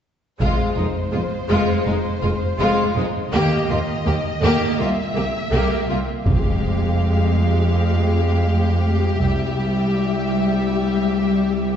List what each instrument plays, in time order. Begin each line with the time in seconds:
0.39 double bass section F1, cello section F2, viola section G#3, violin section F4 C5, taiko
0.77 double bass section F1, cello section F2, viola section G#3, violin section D#4
1.12 double bass section F1, cello section F2, viola section G#3, violin section F4
1.50 double bass section F1, cello section F2, viola section G#3, violin section F4
1.86 double bass section F1, cello section F2, viola section G#3, violin section D#4
2.22 double bass section F1, cello section F2, viola section G#3, violin section F4
2.60 double bass section F1, cello section F2, viola section G#3, violin section F4
2.97 double bass section F1, cello section F2, viola section G#3, violin section D#4
3.33 double bass section D#2, cello section D#2, viola section A#3, violin section G4 D#5
3.69 double bass section D#2, cello section D#2, viola section A#3, violin section F4
4.05 double bass section D#2, cello section D#2, viola section A#3, violin section G4
4.42 double bass section D#2, cello section D#2, viola section A#3, violin section G4
4.79 double bass section C2, cello section C2, viola section A#3, violin section F4 E5
5.15 double bass section C2, cello section C2, viola section A#3, violin section G4
5.52 double bass section C2, cello section C2, viola section A#3, violin section G4
5.89 double bass section C2, cello section C2, viola section A#3, violin section F4
6.25 double bass section F1, cello section F2, viola section G#3, violin section G4 F5, taiko, impact
9.19 cello section C2, double bass section C2, viola section G3, violin section E5